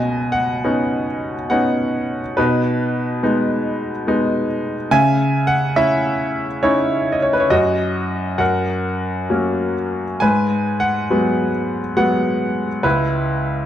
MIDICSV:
0, 0, Header, 1, 2, 480
1, 0, Start_track
1, 0, Tempo, 869565
1, 1312, Time_signature, 3, 2, 24, 8
1, 1312, Tempo, 846262
1, 3232, Tempo, 879765
1, 4672, Tempo, 904977
1, 6112, Tempo, 862069
1, 7527, End_track
2, 0, Start_track
2, 0, Title_t, "Grand piano"
2, 0, Program_c, 0, 0
2, 0, Control_c, 0, 64, 127
2, 0, Note_on_c, 0, 47, 43
2, 0, Note_on_c, 0, 75, 50
2, 0, Note_on_c, 0, 80, 69
2, 177, Note_on_c, 0, 78, 64
2, 198, Note_off_c, 0, 80, 0
2, 354, Note_on_c, 0, 61, 31
2, 356, Note_on_c, 0, 59, 33
2, 357, Note_on_c, 0, 63, 35
2, 577, Note_off_c, 0, 75, 0
2, 741, Note_off_c, 0, 61, 0
2, 742, Note_off_c, 0, 59, 0
2, 743, Note_off_c, 0, 63, 0
2, 809, Note_off_c, 0, 78, 0
2, 827, Note_on_c, 0, 78, 60
2, 832, Note_on_c, 0, 59, 34
2, 836, Note_on_c, 0, 61, 32
2, 836, Note_on_c, 0, 63, 38
2, 1213, Note_off_c, 0, 59, 0
2, 1215, Note_off_c, 0, 63, 0
2, 1216, Note_off_c, 0, 61, 0
2, 1284, Note_off_c, 0, 78, 0
2, 1290, Note_off_c, 0, 47, 0
2, 1307, Note_on_c, 0, 71, 59
2, 1314, Note_on_c, 0, 47, 50
2, 1315, Note_on_c, 0, 63, 42
2, 1319, Control_c, 0, 64, 0
2, 1432, Control_c, 0, 64, 127
2, 1791, Note_off_c, 0, 63, 0
2, 1797, Note_on_c, 0, 56, 37
2, 1797, Note_on_c, 0, 59, 33
2, 1800, Note_on_c, 0, 63, 41
2, 2180, Note_off_c, 0, 59, 0
2, 2181, Note_off_c, 0, 56, 0
2, 2182, Note_off_c, 0, 63, 0
2, 2273, Note_on_c, 0, 56, 37
2, 2278, Note_on_c, 0, 59, 34
2, 2278, Note_on_c, 0, 63, 44
2, 2488, Note_off_c, 0, 71, 0
2, 2654, Note_off_c, 0, 56, 0
2, 2657, Note_off_c, 0, 59, 0
2, 2657, Note_off_c, 0, 63, 0
2, 2728, Note_off_c, 0, 47, 0
2, 2750, Note_on_c, 0, 49, 56
2, 2751, Note_on_c, 0, 80, 89
2, 2754, Note_on_c, 0, 76, 58
2, 2756, Control_c, 0, 64, 0
2, 2866, Control_c, 0, 64, 127
2, 3067, Note_on_c, 0, 78, 71
2, 3079, Note_off_c, 0, 80, 0
2, 3224, Note_off_c, 0, 76, 0
2, 3232, Note_on_c, 0, 61, 39
2, 3233, Note_on_c, 0, 76, 77
2, 3236, Note_off_c, 0, 78, 0
2, 3237, Note_on_c, 0, 64, 47
2, 3612, Note_off_c, 0, 61, 0
2, 3615, Note_off_c, 0, 64, 0
2, 3704, Note_on_c, 0, 73, 65
2, 3707, Note_on_c, 0, 61, 41
2, 3709, Note_on_c, 0, 64, 45
2, 3710, Note_on_c, 0, 63, 35
2, 3722, Note_off_c, 0, 76, 0
2, 3975, Note_on_c, 0, 75, 49
2, 3995, Note_off_c, 0, 73, 0
2, 4029, Note_on_c, 0, 73, 53
2, 4031, Note_off_c, 0, 75, 0
2, 4083, Note_off_c, 0, 73, 0
2, 4089, Note_on_c, 0, 71, 54
2, 4092, Note_off_c, 0, 61, 0
2, 4093, Note_off_c, 0, 63, 0
2, 4093, Note_off_c, 0, 64, 0
2, 4125, Note_on_c, 0, 73, 54
2, 4138, Note_off_c, 0, 71, 0
2, 4166, Note_off_c, 0, 49, 0
2, 4182, Note_off_c, 0, 73, 0
2, 4182, Note_on_c, 0, 42, 51
2, 4182, Note_on_c, 0, 75, 71
2, 4188, Note_on_c, 0, 66, 52
2, 4195, Control_c, 0, 64, 0
2, 4302, Control_c, 0, 64, 127
2, 4651, Note_off_c, 0, 66, 0
2, 4653, Note_off_c, 0, 42, 0
2, 4661, Note_on_c, 0, 42, 46
2, 4662, Note_on_c, 0, 78, 58
2, 4671, Note_on_c, 0, 70, 42
2, 4680, Control_c, 0, 64, 0
2, 4684, Note_off_c, 0, 75, 0
2, 4788, Control_c, 0, 64, 127
2, 5148, Note_on_c, 0, 54, 33
2, 5148, Note_on_c, 0, 58, 29
2, 5151, Note_on_c, 0, 61, 36
2, 5373, Note_off_c, 0, 78, 0
2, 5377, Note_off_c, 0, 70, 0
2, 5540, Note_off_c, 0, 54, 0
2, 5540, Note_off_c, 0, 58, 0
2, 5541, Note_off_c, 0, 61, 0
2, 5614, Note_off_c, 0, 42, 0
2, 5627, Note_on_c, 0, 80, 74
2, 5635, Note_on_c, 0, 44, 48
2, 5637, Note_on_c, 0, 71, 53
2, 5647, Control_c, 0, 64, 0
2, 5752, Control_c, 0, 64, 127
2, 5928, Note_off_c, 0, 80, 0
2, 5944, Note_on_c, 0, 78, 69
2, 6105, Note_on_c, 0, 54, 35
2, 6105, Note_on_c, 0, 56, 31
2, 6108, Note_on_c, 0, 59, 39
2, 6330, Note_off_c, 0, 71, 0
2, 6495, Note_off_c, 0, 54, 0
2, 6495, Note_off_c, 0, 56, 0
2, 6496, Note_off_c, 0, 59, 0
2, 6578, Note_off_c, 0, 78, 0
2, 6586, Note_on_c, 0, 54, 37
2, 6586, Note_on_c, 0, 78, 68
2, 6589, Note_on_c, 0, 59, 42
2, 6590, Note_on_c, 0, 56, 34
2, 6974, Note_off_c, 0, 54, 0
2, 6976, Note_off_c, 0, 59, 0
2, 6977, Note_off_c, 0, 56, 0
2, 7052, Note_off_c, 0, 44, 0
2, 7068, Note_on_c, 0, 37, 51
2, 7068, Note_on_c, 0, 71, 65
2, 7074, Note_on_c, 0, 64, 45
2, 7082, Control_c, 0, 64, 0
2, 7086, Note_off_c, 0, 78, 0
2, 7170, Control_c, 0, 64, 127
2, 7527, Note_off_c, 0, 37, 0
2, 7527, Note_off_c, 0, 64, 0
2, 7527, Note_off_c, 0, 71, 0
2, 7527, End_track
0, 0, End_of_file